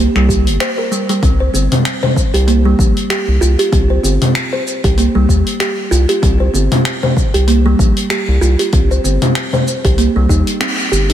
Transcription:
0.00 0.14 A#3 medium
0.16 0.48 C2 loud
0.16 0.28 G3 loud
0.16 finger snap soft
0.29 0.39 G4 medium
0.29 kick medium
0.29 shaker medium
0.47 0.58 G1 loud
0.47 open hi-hat medium
0.47 shaker soft
0.60 0.77 C5 loud
0.60 finger snap loud
0.60 open hi-hat soft
0.60 shaker soft
0.78 0.91 A#4 medium
0.92 1.08 G3 medium
0.92 shaker medium
1.09 1.21 G3 medium
1.09 open hi-hat medium
1.09 shaker soft
1.23 1.49 C2 medium
1.23 1.39 C4 medium
1.23 kick loud
1.23 open hi-hat soft
1.23 shaker soft
1.40 1.53 C5 medium
1.54 1.68 G1 loud
1.54 2.01 C4 medium
1.54 shaker medium
1.72 open hi-hat medium
1.72 low conga medium
1.72 shaker soft
1.85 finger snap loud
1.85 open hi-hat soft
1.85 shaker soft
2.03 2.16 C5 medium
2.03 low conga medium
2.16 kick loud
2.16 shaker medium
2.34 2.74 C2 loud
2.34 2.47 G4 loud
2.34 open hi-hat medium
2.34 shaker soft
2.48 2.64 A#3 medium
2.48 open hi-hat soft
2.48 shaker soft
2.65 3.09 G3 loud
2.79 2.93 A#1 loud
2.79 kick loud
2.79 shaker medium
2.97 open hi-hat medium
2.97 shaker soft
3.10 3.27 G4 medium
3.10 finger snap medium
3.10 open hi-hat soft
3.10 shaker soft
3.28 3.39 C2 medium
3.41 3.56 C2 loud
3.41 3.58 F4 loud
3.41 shaker medium
3.59 3.72 G4 loud
3.59 open hi-hat medium
3.59 shaker soft
3.72 3.98 C2 loud
3.72 3.89 C4 medium
3.72 kick loud
3.72 open hi-hat soft
3.72 shaker soft
3.90 4.02 C5 medium
4.03 4.18 G1 loud
4.03 4.51 C4 medium
4.03 shaker medium
4.22 open hi-hat medium
4.22 low conga medium
4.22 shaker soft
4.35 finger snap medium
4.35 open hi-hat soft
4.35 shaker soft
4.53 4.66 C5 medium
4.67 shaker medium
4.84 5.08 C2 loud
4.84 4.97 G4 loud
4.84 kick loud
4.84 open hi-hat medium
4.84 shaker soft
4.98 5.14 A#3 medium
4.98 open hi-hat soft
4.98 shaker soft
5.15 5.26 C2 loud
5.15 5.59 G3 loud
5.29 5.43 D#2 loud
5.29 kick medium
5.29 shaker medium
5.47 open hi-hat medium
5.47 shaker soft
5.60 5.77 G4 medium
5.60 finger snap medium
5.60 open hi-hat soft
5.60 shaker soft
5.91 6.06 C2 medium
5.91 6.08 F4 loud
5.91 shaker medium
6.09 6.22 G4 loud
6.09 open hi-hat medium
6.09 shaker soft
6.22 6.49 C2 loud
6.22 6.39 C4 medium
6.22 kick loud
6.22 open hi-hat soft
6.22 shaker soft
6.40 6.52 C5 medium
6.54 6.68 G1 loud
6.54 7.01 C4 medium
6.54 shaker medium
6.72 open hi-hat medium
6.72 low conga medium
6.72 shaker soft
6.85 finger snap loud
6.85 open hi-hat soft
6.85 shaker soft
7.03 7.16 C5 medium
7.03 low conga medium
7.17 kick loud
7.17 shaker medium
7.34 7.75 C2 medium
7.34 7.47 G4 loud
7.34 open hi-hat medium
7.34 shaker soft
7.48 7.64 A#3 medium
7.48 open hi-hat soft
7.48 shaker soft
7.66 8.09 G3 loud
7.79 7.93 A#1 loud
7.79 kick loud
7.79 shaker medium
7.97 open hi-hat medium
7.97 shaker soft
8.10 8.27 G4 medium
8.10 finger snap medium
8.10 open hi-hat soft
8.10 shaker soft
8.28 8.39 C2 loud
8.41 8.56 C2 loud
8.41 8.58 F4 loud
8.41 shaker medium
8.59 8.72 G4 loud
8.59 open hi-hat medium
8.59 shaker soft
8.73 8.99 C2 medium
8.73 8.89 C4 medium
8.73 kick loud
8.73 open hi-hat medium
8.73 shaker soft
8.91 9.03 C5 medium
8.91 shaker soft
9.04 9.18 G1 loud
9.04 9.51 C4 medium
9.04 shaker medium
9.22 open hi-hat medium
9.22 low conga medium
9.22 shaker soft
9.35 finger snap loud
9.35 open hi-hat soft
9.35 shaker soft
9.53 9.66 C5 medium
9.53 low conga medium
9.53 shaker soft
9.68 shaker medium
9.85 10.09 C2 medium
9.85 9.97 G4 loud
9.85 kick loud
9.85 open hi-hat medium
9.85 shaker soft
9.98 10.14 A#3 medium
9.98 open hi-hat soft
9.98 shaker soft
10.16 10.27 C2 loud
10.16 10.28 G3 loud
10.29 10.43 D#2 loud
10.29 10.46 D#4 loud
10.29 kick medium
10.29 shaker medium
10.47 open hi-hat medium
10.47 shaker soft
10.61 10.77 C4 medium
10.61 finger snap loud
10.61 open hi-hat soft
10.61 shaker soft
10.79 shaker soft
10.92 11.13 G1 medium
10.92 11.08 G4 medium
10.92 shaker medium
11.10 11.13 D#4 medium
11.10 open hi-hat medium

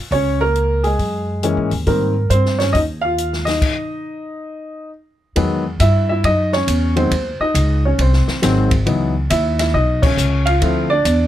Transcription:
0.11 0.95 C#2 medium
0.11 0.39 C#4 medium
0.11 0.41 C#5 loud
0.11 kick soft
0.11 open hi-hat soft
0.41 0.82 A#3 medium
0.41 0.85 A#4 loud
0.56 closed hi-hat soft
0.84 1.42 G#3 medium
0.84 1.67 G#4 medium
0.84 open hi-hat soft
0.99 1.53 F#2 medium
0.99 kick soft
0.99 open hi-hat soft
1.43 1.69 E3 medium
1.43 1.69 G#3 medium
1.43 1.69 A#3 medium
1.43 1.69 C#4 medium
1.43 closed hi-hat soft
1.57 1.71 G#2 medium
1.71 1.85 D#2 medium
1.71 open hi-hat soft
1.87 2.27 G#2 medium
1.87 2.12 D#3 medium
1.87 2.12 G3 soft
1.87 2.12 A#3 medium
1.87 2.13 C4 medium
1.87 2.32 A#4 medium
1.87 kick soft
1.87 open hi-hat soft
2.30 2.71 G2 medium
2.30 2.58 C4 medium
2.30 2.60 C5 medium
2.30 closed hi-hat soft
2.46 snare soft
2.59 2.74 C#4 medium
2.59 2.74 C#5 medium
2.59 snare soft
2.59 open hi-hat soft
2.73 3.58 D#2 medium
2.73 2.82 D#4 medium
2.73 2.79 D#5 medium
2.73 kick soft
2.73 open hi-hat soft
3.01 3.45 F4 medium
3.01 3.47 F5 loud
3.18 closed hi-hat medium
3.33 snare soft
3.45 4.90 D#4 medium
3.45 4.88 D#5 medium
3.45 snare soft
3.45 open hi-hat soft
3.62 kick medium
3.62 crash medium
5.36 5.79 E2 medium
5.36 5.62 D#3 medium
5.36 5.62 F#3 medium
5.36 5.62 G#3 medium
5.36 5.62 B3 medium
5.36 kick soft
5.36 ride medium
5.80 6.22 G2 medium
5.80 6.08 E4 medium
5.80 6.08 E5 medium
5.80 kick soft
5.80 hi-hat pedal medium
5.80 ride medium
6.09 6.24 E4 medium
6.09 6.25 E5 medium
6.24 6.66 F#2 medium
6.24 6.52 D#4 medium
6.24 6.51 D#5 loud
6.24 kick soft
6.24 ride medium
6.52 6.95 C#4 medium
6.52 6.94 C#5 loud
6.52 snare soft
6.67 7.10 E2 medium
6.67 kick soft
6.67 hi-hat pedal medium
6.67 ride medium
6.96 7.10 D#3 medium
6.96 7.10 F#3 medium
6.96 7.10 G#3 medium
6.96 7.10 C4 medium
6.96 7.42 C5 medium
6.96 ride soft
7.11 7.38 D#2 medium
7.11 kick soft
7.11 ride medium
7.40 7.82 D#4 medium
7.40 7.81 D#5 medium
7.40 muted upright bass stroke soft
7.54 7.97 C#2 medium
7.54 kick soft
7.54 hi-hat pedal medium
7.54 ride medium
7.85 7.99 C#4 medium
7.85 8.00 C#5 medium
7.98 8.25 C2 medium
7.98 8.41 C4 medium
7.98 8.68 C5 medium
7.98 kick soft
7.98 ride medium
8.13 snare soft
8.27 muted upright bass stroke soft
8.27 snare soft
8.42 8.85 G#1 medium
8.42 8.68 D#3 medium
8.42 8.68 F#3 medium
8.42 8.69 G#3 medium
8.42 8.69 C4 medium
8.42 kick soft
8.42 snare soft
8.42 hi-hat pedal medium
8.42 ride medium
8.71 kick medium
8.71 ride medium
8.86 9.29 C#2 medium
8.86 9.12 E3 soft
8.86 9.12 F#3 soft
8.86 9.12 B3 soft
8.86 9.12 D#4 medium
8.86 kick soft
8.86 ride medium
9.30 9.73 D#2 loud
9.30 9.58 E4 medium
9.30 9.58 E5 medium
9.30 kick soft
9.30 hi-hat pedal medium
9.30 ride medium
9.59 9.74 E4 medium
9.59 9.75 E5 medium
9.59 snare soft
9.59 ride medium
9.74 10.17 B1 medium
9.74 10.02 D#4 medium
9.74 10.01 D#5 medium
9.74 kick soft
10.02 10.45 C#4 medium
10.02 10.48 C#5 medium
10.02 kick medium
10.02 crash medium
10.17 10.60 C#2 medium
10.17 hi-hat pedal medium
10.46 10.88 F4 medium
10.46 10.91 F5 loud
10.46 ride medium
10.61 11.04 D2 medium
10.61 10.87 F3 medium
10.61 10.87 A3 medium
10.61 10.87 C4 medium
10.61 10.88 E4 medium
10.61 kick soft
10.61 ride medium
10.90 11.27 D4 medium
10.90 11.27 D5 loud
11.05 11.27 E2 medium
11.05 kick soft
11.05 hi-hat pedal medium
11.05 ride medium

